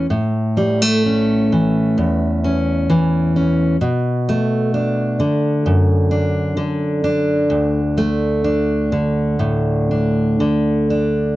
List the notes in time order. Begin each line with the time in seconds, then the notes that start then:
Already playing: A3
0.10 A2
0.57 G3
0.82 A3
1.06 C#4
1.52 E3
1.98 E2
2.44 C#4
2.90 E3
3.36 C#4
3.81 B2
4.29 A3
4.74 D4
5.20 D3
5.66 F#2
6.11 D4
6.57 D3
7.04 D4
7.50 D2
7.98 A3
8.44 D4
8.92 D3
9.39 A2
9.91 D4
10.40 D3
10.90 D4